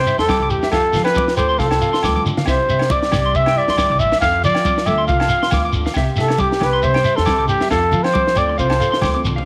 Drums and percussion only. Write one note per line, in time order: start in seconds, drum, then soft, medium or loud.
0.06 shekere loud
0.19 snare medium
0.28 kick medium
0.28 snare medium
0.28 high conga medium
0.28 low agogo medium
0.28 shekere medium
0.50 muted conga soft
0.50 shekere medium
0.61 snare medium
0.61 shekere soft
0.72 kick medium
0.72 snare medium
0.72 muted conga soft
0.72 low agogo medium
0.72 shekere medium
0.93 snare soft
0.93 muted conga soft
0.93 low conga medium
0.93 shekere loud
1.05 snare medium
1.05 low agogo medium
1.05 shekere soft
1.15 kick medium
1.15 high conga medium
1.15 shekere medium
1.28 snare medium
1.37 high conga medium
1.37 low agogo medium
1.37 shekere medium
1.49 shekere soft
1.59 kick medium
1.59 snare soft
1.59 muted conga soft
1.59 shekere medium
1.71 snare medium
1.71 low agogo medium
1.81 shekere loud
1.94 snare medium
1.94 shekere soft
2.03 kick loud
2.03 snare medium
2.03 high conga medium
2.03 low agogo medium
2.03 shekere medium
2.17 high conga medium
2.26 low conga medium
2.26 shekere medium
2.37 snare medium
2.37 low conga medium
2.46 kick medium
2.46 snare medium
2.46 low agogo medium
2.46 shekere medium
2.69 muted conga soft
2.69 shekere medium
2.79 snare medium
2.79 low agogo medium
2.90 kick loud
2.90 high conga loud
2.90 shekere medium
3.03 snare medium
3.12 snare medium
3.12 high conga medium
3.12 low agogo medium
3.12 shekere loud
3.35 kick medium
3.35 shekere medium
3.46 snare medium
3.46 low agogo medium
3.68 snare medium
3.78 kick medium
3.78 snare medium
3.78 high conga medium
3.78 low agogo medium
3.78 shekere medium
3.99 muted conga soft
3.99 shekere medium
4.12 snare medium
4.12 shekere soft
4.21 kick medium
4.21 snare medium
4.21 muted conga soft
4.21 low agogo medium
4.21 shekere medium
4.44 muted conga soft
4.44 low conga medium
4.44 shekere loud
4.55 snare medium
4.55 low agogo medium
4.65 kick loud
4.65 high conga loud
4.65 shekere medium
4.78 snare medium
4.86 high conga medium
4.86 low agogo medium
4.86 shekere loud
5.08 kick medium
5.08 muted conga soft
5.08 shekere medium
5.20 snare medium
5.20 low agogo medium
5.29 shekere loud
5.43 snare medium
5.51 kick medium
5.51 snare medium
5.51 high conga medium
5.51 low conga medium
5.51 low agogo medium
5.51 shekere medium
5.73 muted conga soft
5.73 shekere loud
5.84 snare medium
5.84 shekere soft
5.94 kick medium
5.94 snare medium
5.94 muted conga soft
5.94 low agogo medium
5.94 shekere medium
6.16 snare soft
6.16 muted conga soft
6.16 shekere loud
6.28 snare medium
6.28 low agogo medium
6.38 kick medium
6.38 high conga loud
6.38 shekere medium
6.52 snare medium
6.61 snare medium
6.61 high conga medium
6.61 low agogo medium
6.83 kick loud
6.83 muted conga soft
6.83 shekere medium
6.94 snare medium
6.94 low agogo medium
7.04 shekere loud
7.18 snare medium
7.26 kick medium
7.26 snare medium
7.26 high conga medium
7.26 low agogo medium
7.26 shekere medium
7.48 muted conga soft
7.48 shekere loud
7.60 snare medium
7.60 shekere soft
7.70 kick medium
7.70 snare medium
7.70 muted conga soft
7.70 low agogo medium
7.70 shekere medium
7.92 muted conga soft
7.92 low conga medium
7.92 shekere medium
8.04 snare medium
8.04 low agogo medium
8.14 kick medium
8.14 high conga loud
8.14 shekere medium
8.27 snare medium
8.36 high conga medium
8.36 low agogo medium
8.36 shekere loud
8.57 kick medium
8.57 muted conga soft
8.57 shekere medium
8.70 snare medium
8.70 low agogo medium
8.81 shekere loud
8.94 snare medium
9.02 kick medium
9.02 snare medium
9.02 high conga medium
9.02 low conga medium
9.02 low agogo medium
9.02 shekere medium
9.17 high tom medium
9.25 mid tom medium
9.25 muted conga soft
9.25 shekere loud
9.38 floor tom medium